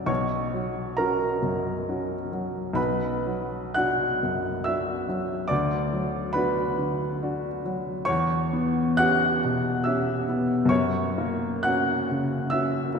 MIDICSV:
0, 0, Header, 1, 2, 480
1, 0, Start_track
1, 0, Key_signature, 2, "minor"
1, 0, Tempo, 892857
1, 50, Time_signature, 3, 2, 24, 8
1, 1490, Tempo, 993377
1, 1970, Tempo, 895522
1, 2450, Tempo, 854701
1, 4370, Tempo, 925926
1, 4850, Tempo, 847458
1, 5810, Tempo, 938967
1, 6290, Tempo, 852273
1, 7051, End_track
2, 0, Start_track
2, 0, Title_t, "Grand piano"
2, 0, Program_c, 0, 0
2, 0, Control_c, 0, 64, 127
2, 0, Note_on_c, 0, 42, 37
2, 0, Note_on_c, 0, 54, 42
2, 0, Note_on_c, 0, 62, 41
2, 0, Note_on_c, 0, 66, 43
2, 0, Note_on_c, 0, 74, 45
2, 0, Note_on_c, 0, 76, 62
2, 0, Note_on_c, 0, 86, 65
2, 0, Note_on_c, 0, 88, 92
2, 34, Note_on_c, 0, 35, 58
2, 34, Note_on_c, 0, 85, 76
2, 43, Note_on_c, 0, 73, 65
2, 61, Note_off_c, 0, 54, 0
2, 61, Note_off_c, 0, 86, 0
2, 61, Note_off_c, 0, 88, 0
2, 61, Control_c, 0, 64, 0
2, 63, Note_off_c, 0, 62, 0
2, 63, Note_off_c, 0, 74, 0
2, 63, Note_off_c, 0, 76, 0
2, 64, Note_off_c, 0, 42, 0
2, 65, Note_off_c, 0, 66, 0
2, 136, Control_c, 0, 64, 127
2, 291, Note_on_c, 0, 54, 44
2, 501, Note_off_c, 0, 73, 0
2, 519, Note_off_c, 0, 85, 0
2, 520, Note_on_c, 0, 82, 74
2, 527, Note_on_c, 0, 70, 59
2, 532, Note_on_c, 0, 61, 40
2, 533, Note_on_c, 0, 66, 42
2, 671, Note_off_c, 0, 54, 0
2, 748, Note_off_c, 0, 61, 0
2, 749, Note_off_c, 0, 66, 0
2, 766, Note_on_c, 0, 42, 40
2, 1015, Note_on_c, 0, 61, 37
2, 1018, Note_on_c, 0, 66, 38
2, 1152, Note_off_c, 0, 42, 0
2, 1230, Note_off_c, 0, 61, 0
2, 1231, Note_off_c, 0, 66, 0
2, 1249, Note_on_c, 0, 54, 44
2, 1460, Note_off_c, 0, 35, 0
2, 1469, Note_off_c, 0, 70, 0
2, 1470, Note_on_c, 0, 35, 62
2, 1479, Note_on_c, 0, 83, 76
2, 1485, Note_on_c, 0, 71, 63
2, 1487, Note_off_c, 0, 82, 0
2, 1491, Note_off_c, 0, 54, 0
2, 1499, Control_c, 0, 64, 0
2, 1590, Control_c, 0, 64, 127
2, 1726, Note_on_c, 0, 54, 42
2, 1949, Note_off_c, 0, 71, 0
2, 1960, Note_on_c, 0, 90, 83
2, 1965, Note_off_c, 0, 83, 0
2, 1965, Note_on_c, 0, 78, 61
2, 1971, Note_on_c, 0, 62, 41
2, 1975, Note_on_c, 0, 66, 47
2, 2120, Note_off_c, 0, 54, 0
2, 2196, Note_off_c, 0, 62, 0
2, 2198, Note_off_c, 0, 66, 0
2, 2220, Note_on_c, 0, 42, 37
2, 2426, Note_off_c, 0, 78, 0
2, 2440, Note_on_c, 0, 88, 73
2, 2445, Note_off_c, 0, 90, 0
2, 2447, Note_on_c, 0, 76, 53
2, 2455, Note_on_c, 0, 62, 39
2, 2459, Note_on_c, 0, 66, 43
2, 2596, Note_off_c, 0, 42, 0
2, 2669, Note_off_c, 0, 62, 0
2, 2671, Note_off_c, 0, 66, 0
2, 2689, Note_on_c, 0, 54, 44
2, 2893, Note_off_c, 0, 35, 0
2, 2901, Note_off_c, 0, 76, 0
2, 2908, Note_on_c, 0, 86, 82
2, 2914, Note_on_c, 0, 74, 67
2, 2920, Note_off_c, 0, 88, 0
2, 2925, Note_off_c, 0, 54, 0
2, 2925, Note_on_c, 0, 38, 63
2, 2933, Control_c, 0, 64, 0
2, 3024, Control_c, 0, 64, 127
2, 3161, Note_on_c, 0, 54, 47
2, 3369, Note_off_c, 0, 74, 0
2, 3386, Note_on_c, 0, 83, 82
2, 3389, Note_off_c, 0, 86, 0
2, 3393, Note_on_c, 0, 71, 67
2, 3399, Note_on_c, 0, 62, 48
2, 3406, Note_on_c, 0, 66, 51
2, 3541, Note_off_c, 0, 54, 0
2, 3617, Note_off_c, 0, 62, 0
2, 3620, Note_off_c, 0, 66, 0
2, 3638, Note_on_c, 0, 50, 37
2, 3890, Note_on_c, 0, 62, 42
2, 3891, Note_on_c, 0, 66, 46
2, 4033, Note_off_c, 0, 50, 0
2, 4109, Note_off_c, 0, 62, 0
2, 4110, Note_off_c, 0, 66, 0
2, 4131, Note_on_c, 0, 54, 43
2, 4345, Note_off_c, 0, 71, 0
2, 4347, Note_off_c, 0, 38, 0
2, 4354, Note_on_c, 0, 85, 87
2, 4360, Note_on_c, 0, 73, 73
2, 4364, Note_off_c, 0, 83, 0
2, 4370, Note_off_c, 0, 54, 0
2, 4372, Note_on_c, 0, 40, 65
2, 4377, Control_c, 0, 64, 0
2, 4458, Control_c, 0, 64, 127
2, 4604, Note_on_c, 0, 59, 49
2, 4825, Note_off_c, 0, 73, 0
2, 4833, Note_on_c, 0, 90, 100
2, 4839, Note_on_c, 0, 78, 79
2, 4843, Note_off_c, 0, 85, 0
2, 4846, Note_on_c, 0, 61, 46
2, 4846, Note_on_c, 0, 67, 49
2, 4997, Note_off_c, 0, 59, 0
2, 5071, Note_off_c, 0, 61, 0
2, 5071, Note_off_c, 0, 67, 0
2, 5098, Note_on_c, 0, 47, 43
2, 5305, Note_off_c, 0, 78, 0
2, 5321, Note_on_c, 0, 88, 64
2, 5325, Note_off_c, 0, 90, 0
2, 5330, Note_on_c, 0, 76, 52
2, 5339, Note_on_c, 0, 67, 46
2, 5340, Note_on_c, 0, 61, 44
2, 5478, Note_off_c, 0, 47, 0
2, 5551, Note_off_c, 0, 67, 0
2, 5552, Note_off_c, 0, 61, 0
2, 5577, Note_on_c, 0, 59, 44
2, 5784, Note_on_c, 0, 42, 61
2, 5785, Note_off_c, 0, 76, 0
2, 5788, Note_off_c, 0, 40, 0
2, 5803, Note_off_c, 0, 88, 0
2, 5804, Note_on_c, 0, 85, 83
2, 5812, Note_off_c, 0, 59, 0
2, 5812, Note_on_c, 0, 73, 72
2, 5817, Control_c, 0, 64, 0
2, 5900, Control_c, 0, 64, 127
2, 6055, Note_on_c, 0, 58, 49
2, 6270, Note_off_c, 0, 73, 0
2, 6285, Note_on_c, 0, 90, 88
2, 6287, Note_off_c, 0, 85, 0
2, 6292, Note_on_c, 0, 78, 67
2, 6300, Note_on_c, 0, 61, 48
2, 6302, Note_on_c, 0, 66, 46
2, 6448, Note_off_c, 0, 58, 0
2, 6523, Note_off_c, 0, 61, 0
2, 6523, Note_off_c, 0, 66, 0
2, 6556, Note_on_c, 0, 49, 42
2, 6755, Note_off_c, 0, 78, 0
2, 6774, Note_off_c, 0, 90, 0
2, 6775, Note_on_c, 0, 88, 80
2, 6783, Note_on_c, 0, 76, 54
2, 6789, Note_on_c, 0, 61, 37
2, 6791, Note_on_c, 0, 66, 39
2, 6925, Note_off_c, 0, 49, 0
2, 6994, Note_off_c, 0, 61, 0
2, 6995, Note_off_c, 0, 66, 0
2, 7027, Note_on_c, 0, 58, 43
2, 7051, Note_off_c, 0, 42, 0
2, 7051, Note_off_c, 0, 58, 0
2, 7051, Note_off_c, 0, 76, 0
2, 7051, Note_off_c, 0, 88, 0
2, 7051, End_track
0, 0, End_of_file